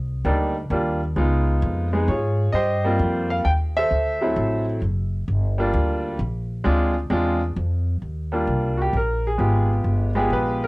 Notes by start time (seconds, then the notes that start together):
Already playing: C2
0.25 D2 G3 A#3 D4 D#4
0.70 D#2 G3 A#3 D4 F4
1.16 C#2 G#3 B3 D#4 F4
1.62 F2
1.93 G#3 B3 D#4 G#4
2.08 G#2 F4 G#4 C#5
2.52 G2 G4 C5 D#5
2.84 G3 A#3 C4 F4
2.99 F2
3.30 F5
3.45 D#2 G5
3.77 A4 C5 E5
3.91 D2
4.21 F#3 A3 C4 E4
4.36 A1
4.82 F#1
5.28 G1
5.58 G3 A#3 D4 F4
5.74 D2
6.19 A#1
6.64 D2 G#3 C4 D4 F4
7.10 E2 G#3 C4 D4 F4
7.56 F2
8.02 D#2
8.32 G3 A#3 D4 F4
8.47 C2
8.77 F#4
8.82 G4
8.93 A#1 A#4
9.27 G#4
9.38 G#1 G#3 B3 F4 G4
9.84 G1
10.15 G#3 B3 F4 G4 G#4
10.30 A#1 B4
10.64 A#4